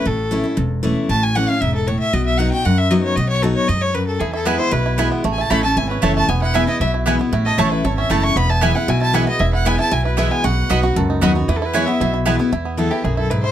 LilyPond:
<<
  \new Staff \with { instrumentName = "Fiddle" } { \time 4/4 \key e \major \tempo 4 = 231 a'2 r2 | a''8 gis''8 fis''8 f''8 e''8 a'8 cis''8 e''8 | dis''8 e''8 fis''8 g''8 fis''8 e''8 dis''8 cis''8 | dis''8 cis''8 a'8 cis''8 dis''8 cis''8 b'8 a'8 |
gis'8 a'8 b'8 c''8 b'4 r4 | \tuplet 3/2 { r8 gis''8 a''8 } b''8 a''8 gis''8 b'8 e''8 a''8 | gis''8 fis''8 e''8 dis''8 e''8 r4. | r8 dis''8 cis''8 b'8 cis''8 e''8 a''8 cis'''8 |
b''8 a''8 gis''8 fis''8 gis''8 a''8 fis''8 dis''8 | e''8 fis''8 gis''8 a''8 gis''8 b'8 e''8 gis''8 | fis''2 r2 | \tuplet 3/2 { b'8 a'8 b'8 } cis''8 e''4 r4. |
r4 a'8 g'8 gis'8 a'8 b'8 c''8 | }
  \new Staff \with { instrumentName = "Mandolin" } { \time 4/4 \key e \major r1 | r1 | r1 | r1 |
r4 <b e' b' gis''>8 r4. <b e' b' gis''>8 r8 | r4 <a e' cis'' a''>8 r4. <a e' cis'' a''>8 r8 | r4 <b e' b' gis''>8 r4. <b e' b' gis''>8 r8 | r4 <a e' cis'' a''>8 r4. <a e' cis'' a''>8 r8 |
r4 <b e' b' gis''>8 r4. <b e' b' gis''>8 r8 | r4 <b e' b' gis''>8 r4. <b e' b' gis''>8 r8 | r4 <b fis' dis'' b''>8 r4. <b fis' dis'' b''>8 r8 | r4 <b e' b' gis''>8 r4. <b e' b' gis''>8 r8 |
r1 | }
  \new Staff \with { instrumentName = "Five-string banjo" } { \time 4/4 \key e \major r1 | r1 | r1 | r1 |
e'8 e'8 b8 e'8 e'8 e'8 e'8 b8 | a8 e'8 cis'8 a'8 e'8 cis'8 a'8 a8 | b8 e'8 e'8 e'8 e'8 e'8 e'8 b8 | e'8 a'8 a8 e'8 a'8 cis'8 e'8 a8 |
b8 e'8 e'8 e'8 e'8 e'8 e'8 b8 | e'8 e'8 b8 e'8 e'8 e'8 e'8 b8 | fis'4 b8 fis'8 a'8 dis'8 fis'8 b8 | e8 e'8 e'8 b8 e'8 e'8 b8 e'8 |
e'8 b8 e'8 e'8 e'8 e'8 e'8 e'8 | }
  \new Staff \with { instrumentName = "Steel-string acoustic guitar" } { \time 4/4 \key e \major << { r4 <e a cis' e'>8 <cis' e'>8 r4 <e a cis' e'>4 | r4 <e a cis' e'>8 <cis' e'>8 r2 | r4 <fis b dis' fis'>8 <dis' fis'>8 r4 <fis b dis' fis'>4 | r4 <fis b dis' fis'>4 r2 |
r4 <e gis b e'>4 r4 <e gis b e'>4 | r4 <e a cis' e'>8 <cis' e'>8 r4 <e a cis' e'>4 | r4 <e gis b e'>8 <b e'>8 r4 <e gis b e'>8 <b e'>8 | r4 <e a cis' e'>4 r4 <e a cis' e'>4 |
r4 <e gis b e'>8 <b e'>8 r4 <e gis b e'>8 <b e'>8 | r4 <e gis b e'>8 <b e'>8 r4 <e gis b e'>4 | r4 <fis b dis' fis'>8 <dis' fis'>8 r4 <fis b dis' fis'>8 <dis' fis'>8 | r4 <e gis b e'>8 <b e'>8 r4 <e gis b e'>8 <b e'>8 |
r4 <e gis b e'>8 <b e'>8 r2 | } \\ { a,2 e,2 | a,2 gis,4 a,4 | b,2 fis,2 | b,2 gis,4 fis,4 |
r2 b,2 | a,2 e,2 | e,2 b,2 | a,2 e,2 |
e,2 b,2 | e,2 b,2 | b,2 fis,2 | e,2 b,2 |
e,2 fis,4 gis,4 | } >> }
  \new Staff \with { instrumentName = "Upright bass" } { \clef bass \time 4/4 \key e \major a,,2 e,,2 | a,,2 e,,2 | b,,2 fis,2 | b,,2 fis,2 |
e,2 b,,2 | a,,4 a,,4 gis,,4 fis,,4 | e,,2 b,,2 | a,,4 a,,4 gis,,4 fis,,4 |
e,,2 b,,2 | e,,2 b,,2 | b,,4 b,,4 cis,4 dis,4 | e,2 b,,2 |
e,2 b,,2 | }
>>